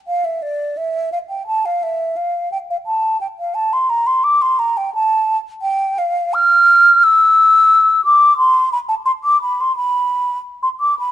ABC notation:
X:1
M:4/4
L:1/16
Q:1/4=87
K:Aphr
V:1 name="Flute"
f e d2 e2 f g a f e2 f2 g f | a2 g f a c' b c' d' c' b g a3 z | [K:Flyd] g2 f2 f'4 e'6 d'2 | c'2 b a c' d' b c' b4- b c' d' b |]